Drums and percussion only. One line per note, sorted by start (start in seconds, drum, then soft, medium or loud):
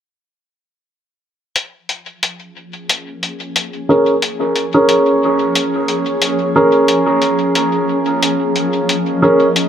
1.56 closed hi-hat soft
1.89 closed hi-hat soft
2.23 closed hi-hat soft
2.89 closed hi-hat soft
3.23 closed hi-hat soft
3.56 closed hi-hat soft
4.22 closed hi-hat soft
4.56 closed hi-hat soft
4.89 closed hi-hat soft
5.55 closed hi-hat soft
5.88 closed hi-hat soft
6.22 closed hi-hat soft
6.88 closed hi-hat soft
7.22 closed hi-hat soft
7.55 closed hi-hat soft
8.23 closed hi-hat soft
8.56 closed hi-hat soft
8.89 closed hi-hat soft
9.56 closed hi-hat soft